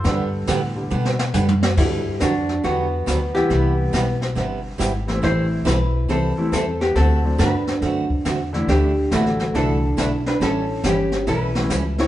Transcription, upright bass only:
X:1
M:4/4
L:1/8
Q:"Swing" 1/4=139
K:G
V:1 name="Upright bass" clef=bass
G,,2 A,,2 B,,2 F,,2 | G,,2 =F,,2 E,,2 D,,2 | C,,2 B,,,2 G,,,2 _A,,,2 | A,,,2 B,,,2 C,, z E,,2 |
D,,2 G,,2 F,,2 E,,2 | D,,2 A,,,2 C,,2 B,,,2 | A,,,2 G,,,2 B,,,2 ^C,,2 |]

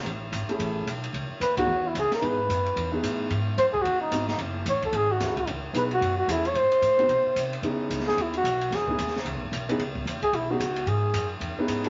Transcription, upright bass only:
X:1
M:4/4
L:1/8
Q:"Swing" 1/4=222
K:C#m
V:1 name="Upright bass" clef=bass
A,,,2 G,,, z A,,,2 B,,,2 | C,, z D,,2 E,,2 C,, z | G,,2 F,,2 E,,2 A,,2 | G,,2 F,,2 D,,2 G,,,2 |
F,,,2 (3A,,, F,,, E,,, G,,,2 D,,2 | C,,2 B,,,2 F,,2 E,,2 | G,, z A,,2 B,, z ^B,,2 | C,2 C,,2 D,,2 B,,,2 |
E,,2 D,,2 (3C,, B,,, G,,, B,,,2 | C,,2 D,, z B,,,2 C,,2 | G,,2 F,,2 E,, z G,,2 |]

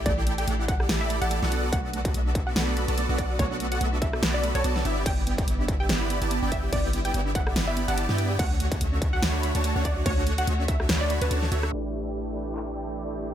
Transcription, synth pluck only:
X:1
M:4/4
L:1/16
Q:"Swing 16ths" 1/4=144
K:Amix
V:1 name="Synth pluck"
d2 z g2 z f2 z e z f z4 | f2 z4 z f2 z4 z d z | c2 z f2 z e2 z d z c z4 | g2 z4 z g2 z4 z e z |
d2 z g2 z f2 z e z f z4 | f2 z4 z f2 z4 z d z | c2 z f2 z e2 z d z B z4 | z16 |]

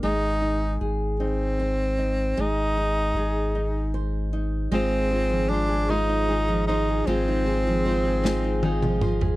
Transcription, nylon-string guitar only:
X:1
M:6/8
L:1/16
Q:3/8=51
K:Ablyd
V:1 name="Nylon-string guitar"
A,2 E2 A2 E2 c2 E2 | A,2 E2 A2 E2 c2 E2 | [A,c]2 A F, c A [A,c] E A F, c A | [A,c] E A F, c A [A,c] E A F, c A |]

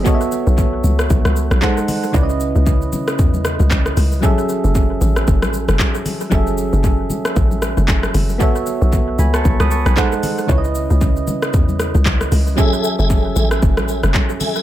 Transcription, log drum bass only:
X:1
M:4/4
L:1/16
Q:"Swing 16ths" 1/4=115
K:F#dor
V:1 name="Log drum bass" clef=bass
z3 B,,,3 C,,2 B,,, C,,2 B,,, z4 | C,,3 C,,3 z2 E,,3 C,,3 C,,2 | z3 F,,,3 A,,,2 F,,, A,,,2 F,,, z4 | F,,,3 F,,,3 z2 A,,,3 F,,,3 F,,,2 |
z3 B,,,3 C,,2 B,,, C,,2 B,,, z4 | C,,3 C,,3 z2 E,,3 C,,3 C,,2 | z3 F,,,3 A,,,2 F,,, A,,,2 F,,, z4 |]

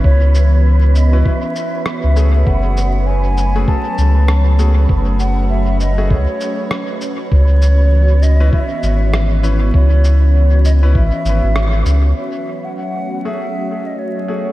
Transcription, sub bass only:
X:1
M:4/4
L:1/16
Q:"Swing 16ths" 1/4=99
K:F#m
V:1 name="Sub bass" clef=bass
C,,8 z4 z C,,3 | F,,,8 z2 C,,6 | F,,,8 C,, z6 z | C,,8 z2 G,,,6 |
C,,8 G,,, z G,,, G,,,3 C,,2 | z16 |]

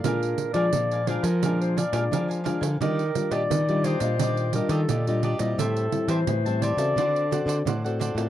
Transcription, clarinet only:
X:1
M:4/4
L:1/16
Q:1/4=87
K:Eblyd
V:1 name="Clarinet"
B3 d3 c B2 c d4 z2 | B3 d3 c4 B A3 z2 | A3 c3 d8 z2 |]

